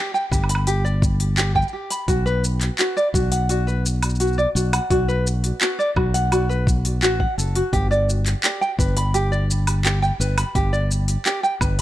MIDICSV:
0, 0, Header, 1, 4, 480
1, 0, Start_track
1, 0, Key_signature, 1, "major"
1, 0, Tempo, 705882
1, 1416, Time_signature, 4, 2, 24, 8
1, 8036, End_track
2, 0, Start_track
2, 0, Title_t, "Ukulele"
2, 0, Program_c, 0, 24
2, 0, Note_on_c, 0, 67, 86
2, 84, Note_off_c, 0, 67, 0
2, 96, Note_on_c, 0, 79, 94
2, 164, Note_off_c, 0, 79, 0
2, 216, Note_on_c, 0, 67, 65
2, 330, Note_off_c, 0, 67, 0
2, 337, Note_on_c, 0, 83, 81
2, 451, Note_off_c, 0, 83, 0
2, 456, Note_on_c, 0, 67, 101
2, 564, Note_off_c, 0, 67, 0
2, 575, Note_on_c, 0, 74, 97
2, 690, Note_off_c, 0, 74, 0
2, 935, Note_on_c, 0, 67, 77
2, 1044, Note_off_c, 0, 67, 0
2, 1057, Note_on_c, 0, 79, 100
2, 1125, Note_off_c, 0, 79, 0
2, 1177, Note_on_c, 0, 67, 71
2, 1290, Note_off_c, 0, 67, 0
2, 1296, Note_on_c, 0, 83, 77
2, 1410, Note_off_c, 0, 83, 0
2, 1417, Note_on_c, 0, 66, 101
2, 1524, Note_off_c, 0, 66, 0
2, 1535, Note_on_c, 0, 71, 97
2, 1650, Note_off_c, 0, 71, 0
2, 1896, Note_on_c, 0, 66, 82
2, 2004, Note_off_c, 0, 66, 0
2, 2017, Note_on_c, 0, 74, 98
2, 2085, Note_off_c, 0, 74, 0
2, 2136, Note_on_c, 0, 66, 73
2, 2250, Note_off_c, 0, 66, 0
2, 2256, Note_on_c, 0, 78, 72
2, 2370, Note_off_c, 0, 78, 0
2, 2376, Note_on_c, 0, 66, 101
2, 2484, Note_off_c, 0, 66, 0
2, 2496, Note_on_c, 0, 71, 88
2, 2610, Note_off_c, 0, 71, 0
2, 2856, Note_on_c, 0, 66, 80
2, 2964, Note_off_c, 0, 66, 0
2, 2977, Note_on_c, 0, 74, 98
2, 3045, Note_off_c, 0, 74, 0
2, 3097, Note_on_c, 0, 66, 75
2, 3211, Note_off_c, 0, 66, 0
2, 3217, Note_on_c, 0, 78, 68
2, 3331, Note_off_c, 0, 78, 0
2, 3337, Note_on_c, 0, 66, 103
2, 3444, Note_off_c, 0, 66, 0
2, 3457, Note_on_c, 0, 71, 92
2, 3570, Note_off_c, 0, 71, 0
2, 3817, Note_on_c, 0, 66, 79
2, 3924, Note_off_c, 0, 66, 0
2, 3936, Note_on_c, 0, 74, 93
2, 4004, Note_off_c, 0, 74, 0
2, 4056, Note_on_c, 0, 66, 68
2, 4170, Note_off_c, 0, 66, 0
2, 4176, Note_on_c, 0, 78, 77
2, 4290, Note_off_c, 0, 78, 0
2, 4297, Note_on_c, 0, 66, 98
2, 4404, Note_off_c, 0, 66, 0
2, 4416, Note_on_c, 0, 71, 98
2, 4530, Note_off_c, 0, 71, 0
2, 4777, Note_on_c, 0, 66, 101
2, 4884, Note_off_c, 0, 66, 0
2, 4896, Note_on_c, 0, 78, 72
2, 5010, Note_off_c, 0, 78, 0
2, 5017, Note_on_c, 0, 69, 72
2, 5124, Note_off_c, 0, 69, 0
2, 5138, Note_on_c, 0, 66, 92
2, 5245, Note_off_c, 0, 66, 0
2, 5255, Note_on_c, 0, 67, 96
2, 5364, Note_off_c, 0, 67, 0
2, 5377, Note_on_c, 0, 74, 98
2, 5491, Note_off_c, 0, 74, 0
2, 5737, Note_on_c, 0, 67, 82
2, 5845, Note_off_c, 0, 67, 0
2, 5857, Note_on_c, 0, 79, 99
2, 5925, Note_off_c, 0, 79, 0
2, 5977, Note_on_c, 0, 71, 73
2, 6085, Note_off_c, 0, 71, 0
2, 6097, Note_on_c, 0, 83, 76
2, 6211, Note_off_c, 0, 83, 0
2, 6216, Note_on_c, 0, 67, 102
2, 6324, Note_off_c, 0, 67, 0
2, 6336, Note_on_c, 0, 74, 98
2, 6450, Note_off_c, 0, 74, 0
2, 6695, Note_on_c, 0, 67, 80
2, 6803, Note_off_c, 0, 67, 0
2, 6815, Note_on_c, 0, 79, 98
2, 6884, Note_off_c, 0, 79, 0
2, 6937, Note_on_c, 0, 71, 75
2, 7045, Note_off_c, 0, 71, 0
2, 7056, Note_on_c, 0, 83, 70
2, 7170, Note_off_c, 0, 83, 0
2, 7176, Note_on_c, 0, 67, 95
2, 7284, Note_off_c, 0, 67, 0
2, 7295, Note_on_c, 0, 74, 97
2, 7409, Note_off_c, 0, 74, 0
2, 7655, Note_on_c, 0, 67, 90
2, 7763, Note_off_c, 0, 67, 0
2, 7774, Note_on_c, 0, 79, 98
2, 7844, Note_off_c, 0, 79, 0
2, 7895, Note_on_c, 0, 71, 69
2, 8003, Note_off_c, 0, 71, 0
2, 8036, End_track
3, 0, Start_track
3, 0, Title_t, "Fingered electric bass"
3, 0, Program_c, 1, 33
3, 214, Note_on_c, 1, 31, 100
3, 1108, Note_off_c, 1, 31, 0
3, 1415, Note_on_c, 1, 35, 100
3, 1828, Note_off_c, 1, 35, 0
3, 2135, Note_on_c, 1, 35, 96
3, 3028, Note_off_c, 1, 35, 0
3, 3094, Note_on_c, 1, 35, 97
3, 3251, Note_off_c, 1, 35, 0
3, 3335, Note_on_c, 1, 35, 99
3, 3748, Note_off_c, 1, 35, 0
3, 4055, Note_on_c, 1, 35, 100
3, 4777, Note_off_c, 1, 35, 0
3, 4777, Note_on_c, 1, 33, 78
3, 4933, Note_off_c, 1, 33, 0
3, 5017, Note_on_c, 1, 30, 74
3, 5173, Note_off_c, 1, 30, 0
3, 5255, Note_on_c, 1, 31, 100
3, 5668, Note_off_c, 1, 31, 0
3, 5975, Note_on_c, 1, 31, 95
3, 6869, Note_off_c, 1, 31, 0
3, 6933, Note_on_c, 1, 31, 97
3, 7091, Note_off_c, 1, 31, 0
3, 7175, Note_on_c, 1, 31, 95
3, 7588, Note_off_c, 1, 31, 0
3, 7894, Note_on_c, 1, 31, 103
3, 8036, Note_off_c, 1, 31, 0
3, 8036, End_track
4, 0, Start_track
4, 0, Title_t, "Drums"
4, 103, Note_on_c, 9, 82, 22
4, 171, Note_off_c, 9, 82, 0
4, 215, Note_on_c, 9, 36, 104
4, 217, Note_on_c, 9, 77, 26
4, 223, Note_on_c, 9, 82, 82
4, 283, Note_off_c, 9, 36, 0
4, 285, Note_off_c, 9, 77, 0
4, 291, Note_off_c, 9, 82, 0
4, 296, Note_on_c, 9, 77, 38
4, 336, Note_on_c, 9, 46, 61
4, 342, Note_on_c, 9, 82, 39
4, 364, Note_off_c, 9, 77, 0
4, 374, Note_on_c, 9, 77, 52
4, 404, Note_off_c, 9, 46, 0
4, 410, Note_off_c, 9, 82, 0
4, 442, Note_off_c, 9, 77, 0
4, 455, Note_on_c, 9, 46, 47
4, 462, Note_on_c, 9, 82, 44
4, 523, Note_off_c, 9, 46, 0
4, 530, Note_off_c, 9, 82, 0
4, 582, Note_on_c, 9, 82, 23
4, 650, Note_off_c, 9, 82, 0
4, 695, Note_on_c, 9, 36, 110
4, 701, Note_on_c, 9, 82, 75
4, 763, Note_off_c, 9, 36, 0
4, 769, Note_off_c, 9, 82, 0
4, 816, Note_on_c, 9, 46, 55
4, 822, Note_on_c, 9, 82, 32
4, 884, Note_off_c, 9, 46, 0
4, 890, Note_off_c, 9, 82, 0
4, 937, Note_on_c, 9, 39, 109
4, 937, Note_on_c, 9, 46, 48
4, 943, Note_on_c, 9, 82, 45
4, 1005, Note_off_c, 9, 39, 0
4, 1005, Note_off_c, 9, 46, 0
4, 1011, Note_off_c, 9, 82, 0
4, 1055, Note_on_c, 9, 36, 56
4, 1062, Note_on_c, 9, 82, 10
4, 1101, Note_off_c, 9, 82, 0
4, 1101, Note_on_c, 9, 82, 12
4, 1123, Note_off_c, 9, 36, 0
4, 1142, Note_off_c, 9, 82, 0
4, 1142, Note_on_c, 9, 82, 16
4, 1210, Note_off_c, 9, 82, 0
4, 1295, Note_on_c, 9, 46, 55
4, 1302, Note_on_c, 9, 82, 84
4, 1363, Note_off_c, 9, 46, 0
4, 1370, Note_off_c, 9, 82, 0
4, 1415, Note_on_c, 9, 36, 118
4, 1415, Note_on_c, 9, 46, 38
4, 1422, Note_on_c, 9, 82, 45
4, 1483, Note_off_c, 9, 36, 0
4, 1483, Note_off_c, 9, 46, 0
4, 1490, Note_off_c, 9, 82, 0
4, 1542, Note_on_c, 9, 82, 23
4, 1610, Note_off_c, 9, 82, 0
4, 1661, Note_on_c, 9, 82, 82
4, 1729, Note_off_c, 9, 82, 0
4, 1776, Note_on_c, 9, 39, 32
4, 1776, Note_on_c, 9, 46, 51
4, 1844, Note_off_c, 9, 39, 0
4, 1844, Note_off_c, 9, 46, 0
4, 1896, Note_on_c, 9, 39, 96
4, 1896, Note_on_c, 9, 46, 40
4, 1902, Note_on_c, 9, 82, 45
4, 1964, Note_off_c, 9, 39, 0
4, 1964, Note_off_c, 9, 46, 0
4, 1970, Note_off_c, 9, 82, 0
4, 2022, Note_on_c, 9, 82, 23
4, 2090, Note_off_c, 9, 82, 0
4, 2135, Note_on_c, 9, 36, 108
4, 2143, Note_on_c, 9, 82, 84
4, 2203, Note_off_c, 9, 36, 0
4, 2211, Note_off_c, 9, 82, 0
4, 2256, Note_on_c, 9, 46, 56
4, 2262, Note_on_c, 9, 82, 36
4, 2324, Note_off_c, 9, 46, 0
4, 2330, Note_off_c, 9, 82, 0
4, 2376, Note_on_c, 9, 46, 45
4, 2382, Note_on_c, 9, 82, 48
4, 2444, Note_off_c, 9, 46, 0
4, 2450, Note_off_c, 9, 82, 0
4, 2503, Note_on_c, 9, 82, 24
4, 2571, Note_off_c, 9, 82, 0
4, 2624, Note_on_c, 9, 82, 82
4, 2692, Note_off_c, 9, 82, 0
4, 2737, Note_on_c, 9, 46, 53
4, 2737, Note_on_c, 9, 77, 56
4, 2744, Note_on_c, 9, 82, 33
4, 2785, Note_off_c, 9, 82, 0
4, 2785, Note_on_c, 9, 82, 27
4, 2805, Note_off_c, 9, 46, 0
4, 2805, Note_off_c, 9, 77, 0
4, 2824, Note_off_c, 9, 82, 0
4, 2824, Note_on_c, 9, 82, 21
4, 2856, Note_on_c, 9, 46, 43
4, 2863, Note_off_c, 9, 82, 0
4, 2863, Note_on_c, 9, 82, 49
4, 2903, Note_off_c, 9, 82, 0
4, 2903, Note_on_c, 9, 82, 16
4, 2924, Note_off_c, 9, 46, 0
4, 2944, Note_off_c, 9, 82, 0
4, 2944, Note_on_c, 9, 82, 13
4, 2984, Note_off_c, 9, 82, 0
4, 2984, Note_on_c, 9, 82, 22
4, 3052, Note_off_c, 9, 82, 0
4, 3104, Note_on_c, 9, 82, 80
4, 3172, Note_off_c, 9, 82, 0
4, 3218, Note_on_c, 9, 46, 57
4, 3218, Note_on_c, 9, 77, 75
4, 3224, Note_on_c, 9, 82, 34
4, 3286, Note_off_c, 9, 46, 0
4, 3286, Note_off_c, 9, 77, 0
4, 3292, Note_off_c, 9, 82, 0
4, 3335, Note_on_c, 9, 36, 112
4, 3336, Note_on_c, 9, 46, 40
4, 3342, Note_on_c, 9, 82, 43
4, 3403, Note_off_c, 9, 36, 0
4, 3404, Note_off_c, 9, 46, 0
4, 3410, Note_off_c, 9, 82, 0
4, 3463, Note_on_c, 9, 82, 22
4, 3531, Note_off_c, 9, 82, 0
4, 3583, Note_on_c, 9, 82, 81
4, 3651, Note_off_c, 9, 82, 0
4, 3698, Note_on_c, 9, 46, 52
4, 3704, Note_on_c, 9, 82, 35
4, 3766, Note_off_c, 9, 46, 0
4, 3772, Note_off_c, 9, 82, 0
4, 3817, Note_on_c, 9, 39, 94
4, 3817, Note_on_c, 9, 46, 43
4, 3823, Note_on_c, 9, 82, 44
4, 3885, Note_off_c, 9, 39, 0
4, 3885, Note_off_c, 9, 46, 0
4, 3891, Note_off_c, 9, 82, 0
4, 3944, Note_on_c, 9, 82, 23
4, 4012, Note_off_c, 9, 82, 0
4, 4055, Note_on_c, 9, 36, 109
4, 4057, Note_on_c, 9, 77, 62
4, 4123, Note_off_c, 9, 36, 0
4, 4125, Note_off_c, 9, 77, 0
4, 4178, Note_on_c, 9, 46, 57
4, 4184, Note_on_c, 9, 82, 34
4, 4246, Note_off_c, 9, 46, 0
4, 4252, Note_off_c, 9, 82, 0
4, 4298, Note_on_c, 9, 46, 45
4, 4298, Note_on_c, 9, 77, 59
4, 4304, Note_on_c, 9, 82, 45
4, 4366, Note_off_c, 9, 46, 0
4, 4366, Note_off_c, 9, 77, 0
4, 4372, Note_off_c, 9, 82, 0
4, 4424, Note_on_c, 9, 82, 21
4, 4492, Note_off_c, 9, 82, 0
4, 4535, Note_on_c, 9, 36, 110
4, 4544, Note_on_c, 9, 82, 80
4, 4603, Note_off_c, 9, 36, 0
4, 4612, Note_off_c, 9, 82, 0
4, 4658, Note_on_c, 9, 46, 55
4, 4664, Note_on_c, 9, 82, 33
4, 4726, Note_off_c, 9, 46, 0
4, 4732, Note_off_c, 9, 82, 0
4, 4779, Note_on_c, 9, 39, 97
4, 4779, Note_on_c, 9, 46, 43
4, 4785, Note_on_c, 9, 82, 48
4, 4847, Note_off_c, 9, 39, 0
4, 4847, Note_off_c, 9, 46, 0
4, 4853, Note_off_c, 9, 82, 0
4, 4896, Note_on_c, 9, 36, 62
4, 4964, Note_off_c, 9, 36, 0
4, 5025, Note_on_c, 9, 82, 72
4, 5093, Note_off_c, 9, 82, 0
4, 5137, Note_on_c, 9, 46, 51
4, 5205, Note_off_c, 9, 46, 0
4, 5256, Note_on_c, 9, 36, 112
4, 5258, Note_on_c, 9, 46, 38
4, 5264, Note_on_c, 9, 82, 38
4, 5324, Note_off_c, 9, 36, 0
4, 5326, Note_off_c, 9, 46, 0
4, 5332, Note_off_c, 9, 82, 0
4, 5385, Note_on_c, 9, 82, 22
4, 5453, Note_off_c, 9, 82, 0
4, 5504, Note_on_c, 9, 82, 73
4, 5572, Note_off_c, 9, 82, 0
4, 5618, Note_on_c, 9, 39, 30
4, 5618, Note_on_c, 9, 46, 55
4, 5625, Note_on_c, 9, 82, 33
4, 5686, Note_off_c, 9, 39, 0
4, 5686, Note_off_c, 9, 46, 0
4, 5693, Note_off_c, 9, 82, 0
4, 5738, Note_on_c, 9, 39, 96
4, 5738, Note_on_c, 9, 46, 41
4, 5744, Note_on_c, 9, 82, 45
4, 5806, Note_off_c, 9, 39, 0
4, 5806, Note_off_c, 9, 46, 0
4, 5812, Note_off_c, 9, 82, 0
4, 5864, Note_on_c, 9, 82, 21
4, 5932, Note_off_c, 9, 82, 0
4, 5975, Note_on_c, 9, 36, 112
4, 5983, Note_on_c, 9, 82, 74
4, 6043, Note_off_c, 9, 36, 0
4, 6051, Note_off_c, 9, 82, 0
4, 6097, Note_on_c, 9, 46, 57
4, 6103, Note_on_c, 9, 82, 35
4, 6165, Note_off_c, 9, 46, 0
4, 6171, Note_off_c, 9, 82, 0
4, 6217, Note_on_c, 9, 46, 43
4, 6223, Note_on_c, 9, 82, 46
4, 6285, Note_off_c, 9, 46, 0
4, 6291, Note_off_c, 9, 82, 0
4, 6343, Note_on_c, 9, 82, 22
4, 6411, Note_off_c, 9, 82, 0
4, 6464, Note_on_c, 9, 82, 74
4, 6532, Note_off_c, 9, 82, 0
4, 6578, Note_on_c, 9, 46, 54
4, 6578, Note_on_c, 9, 77, 56
4, 6584, Note_on_c, 9, 82, 32
4, 6646, Note_off_c, 9, 46, 0
4, 6646, Note_off_c, 9, 77, 0
4, 6652, Note_off_c, 9, 82, 0
4, 6698, Note_on_c, 9, 39, 101
4, 6698, Note_on_c, 9, 46, 42
4, 6704, Note_on_c, 9, 82, 44
4, 6766, Note_off_c, 9, 39, 0
4, 6766, Note_off_c, 9, 46, 0
4, 6772, Note_off_c, 9, 82, 0
4, 6823, Note_on_c, 9, 82, 20
4, 6891, Note_off_c, 9, 82, 0
4, 6943, Note_on_c, 9, 82, 75
4, 7011, Note_off_c, 9, 82, 0
4, 7056, Note_on_c, 9, 46, 54
4, 7056, Note_on_c, 9, 77, 77
4, 7062, Note_on_c, 9, 82, 36
4, 7124, Note_off_c, 9, 46, 0
4, 7124, Note_off_c, 9, 77, 0
4, 7130, Note_off_c, 9, 82, 0
4, 7175, Note_on_c, 9, 36, 107
4, 7176, Note_on_c, 9, 46, 44
4, 7183, Note_on_c, 9, 82, 37
4, 7243, Note_off_c, 9, 36, 0
4, 7244, Note_off_c, 9, 46, 0
4, 7251, Note_off_c, 9, 82, 0
4, 7301, Note_on_c, 9, 82, 20
4, 7369, Note_off_c, 9, 82, 0
4, 7421, Note_on_c, 9, 82, 77
4, 7489, Note_off_c, 9, 82, 0
4, 7535, Note_on_c, 9, 46, 58
4, 7541, Note_on_c, 9, 82, 34
4, 7603, Note_off_c, 9, 46, 0
4, 7609, Note_off_c, 9, 82, 0
4, 7655, Note_on_c, 9, 39, 91
4, 7655, Note_on_c, 9, 46, 43
4, 7661, Note_on_c, 9, 82, 42
4, 7723, Note_off_c, 9, 39, 0
4, 7723, Note_off_c, 9, 46, 0
4, 7729, Note_off_c, 9, 82, 0
4, 7781, Note_on_c, 9, 82, 21
4, 7849, Note_off_c, 9, 82, 0
4, 7894, Note_on_c, 9, 36, 105
4, 7894, Note_on_c, 9, 77, 63
4, 7900, Note_on_c, 9, 82, 83
4, 7962, Note_off_c, 9, 36, 0
4, 7962, Note_off_c, 9, 77, 0
4, 7968, Note_off_c, 9, 82, 0
4, 8036, End_track
0, 0, End_of_file